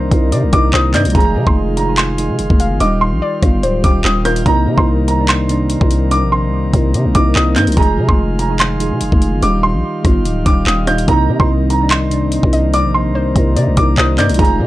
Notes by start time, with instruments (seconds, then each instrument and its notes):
Already playing: 808-style bass C2, synth keys C3 A#3 D4, pipe organ C3 D#3 A#3, synth pluck C5, grand piano C6
0.10 808-style bass C2, synth keys C3 A#3 D#4, kick, closed hi-hat
0.32 808-style bass C3, synth pluck D5, closed hi-hat
0.43 808-style bass C2
0.51 808-style bass C2, synth keys C3 A#3 D#4, grand piano D6, kick, closed hi-hat
0.73 808-style bass C2, synth pluck C5, grand piano D#6, clap
0.92 808-style bass G2, synth keys C3 A#3 D#4, synth pluck D5, grand piano G6, clap, closed hi-hat
1.05 808-style bass C2, closed hi-hat
1.10 synth keys F3, closed hi-hat
1.15 808-style bass F1, pipe organ D#3 G#3 F4, synth keys D#4 G#4, grand piano A#5, kick, closed hi-hat
1.20 closed hi-hat
1.36 808-style bass C3
1.47 808-style bass F1, grand piano C6, kick
1.77 grand piano A#5, closed hi-hat
1.86 synth keys F3 D#4 G#4
1.98 grand piano C6, clap, closed hi-hat
2.17 synth keys F3 D#4 G#4, closed hi-hat
2.30 808-style bass C3
2.39 808-style bass F1, closed hi-hat
2.50 808-style bass F1, kick
2.60 synth pluck F5, closed hi-hat
2.71 808-style bass G1
2.80 808-style bass D#1, pipe organ G3, synth pluck D#5, grand piano D6, closed hi-hat
3.01 grand piano C6
3.12 808-style bass A#1
3.22 synth pluck D5
3.41 808-style bass G1, synth keys G3 D#4 F4, kick, cross-stick, closed hi-hat
3.63 808-style bass D1, synth pluck C5, closed hi-hat
3.82 808-style bass D#1, synth keys G3 D#4 G4, grand piano D6, kick, closed hi-hat
4.04 808-style bass D#1, grand piano D#6, clap
4.23 synth keys G3 D#4 F4, synth pluck A#4, grand piano G6, cross-stick, closed hi-hat
4.36 closed hi-hat
4.45 808-style bass C2, synth keys C3 A#3 D#4, pipe organ C3 D#3 A#3, grand piano A#5, kick, closed hi-hat
4.67 808-style bass C3
4.77 808-style bass C2, grand piano C6, kick
5.08 grand piano A#5, closed hi-hat
5.17 synth keys C3 A#3 D4
5.29 grand piano C6, clap, closed hi-hat
5.48 synth keys C3 A#3 D4, closed hi-hat
5.70 closed hi-hat
5.81 808-style bass C2, kick
5.91 closed hi-hat
6.11 grand piano D6, closed hi-hat
6.22 808-style bass A#1
6.32 grand piano C6
6.48 808-style bass C2
6.72 808-style bass C2, synth keys C3 A#3 D#4, kick, closed hi-hat
6.94 808-style bass C3, closed hi-hat
7.05 808-style bass C2
7.13 808-style bass C2, synth keys C3 A#3 D#4, grand piano D6, kick, closed hi-hat
7.35 808-style bass C2, grand piano D#6, clap
7.54 808-style bass G2, synth keys C3 A#3 D#4, grand piano G6, clap, closed hi-hat
7.67 808-style bass C2, closed hi-hat
7.72 synth keys F3, closed hi-hat
7.77 808-style bass F1, pipe organ D#3 G#3 F4, synth keys D#4 G#4, grand piano A#5, kick, closed hi-hat
7.82 closed hi-hat
7.98 808-style bass C3
8.09 808-style bass F1, grand piano C6, kick
8.39 grand piano A#5, closed hi-hat
8.48 synth keys F3 D#4 G#4
8.60 grand piano C6, clap, closed hi-hat
8.79 synth keys F3 D#4 G#4, closed hi-hat
8.91 808-style bass C3
9.01 808-style bass F1, closed hi-hat
9.12 808-style bass F1, kick
9.22 closed hi-hat
9.33 808-style bass G1
9.42 808-style bass D#1, pipe organ D#3 G3, grand piano D6, closed hi-hat
9.63 grand piano C6
9.74 808-style bass A#1
10.03 808-style bass G1, synth keys G3 D#4 F4, kick, cross-stick, closed hi-hat
10.25 808-style bass D1, closed hi-hat
10.44 808-style bass D#1, synth keys G3 D#4 G4, grand piano D6, kick, closed hi-hat
10.67 808-style bass D#1, grand piano D#6, clap
10.85 synth keys G3 D#4 F4, grand piano G6, cross-stick, closed hi-hat
10.98 closed hi-hat
11.07 808-style bass C2, synth keys C3 A#3 D#4, pipe organ C3 D#3 A#3, grand piano A#5, kick, closed hi-hat
11.29 808-style bass C3
11.40 808-style bass C2, grand piano C6, kick
11.70 grand piano A#5, closed hi-hat
11.79 synth keys C3 A#3 D4
11.91 grand piano C6, clap, closed hi-hat
12.10 synth keys C3 A#3 D4, closed hi-hat
12.32 closed hi-hat
12.43 808-style bass C2, kick
12.53 synth pluck D#5, closed hi-hat
12.74 synth pluck D5, grand piano D6, closed hi-hat
12.85 808-style bass A#1
12.94 grand piano C6
13.10 808-style bass C2
13.15 synth pluck C5
13.35 808-style bass C2, synth keys C3 A#3 D#4, kick, closed hi-hat
13.56 808-style bass C3, synth pluck D5, closed hi-hat
13.67 808-style bass C2
13.75 808-style bass C2, synth keys C3 A#3 D#4, grand piano D6, kick, closed hi-hat
13.98 808-style bass C2, synth pluck C5, grand piano D#6, clap
14.16 808-style bass G2, synth keys C3 A#3 D#4, synth pluck D5, grand piano G6, clap, closed hi-hat
14.29 808-style bass C2, closed hi-hat
14.34 synth keys F3, closed hi-hat
14.39 808-style bass F1, pipe organ D#3 G#3 F4, synth keys D#4 G#4, grand piano A#5, kick, closed hi-hat
14.45 closed hi-hat
14.60 808-style bass C3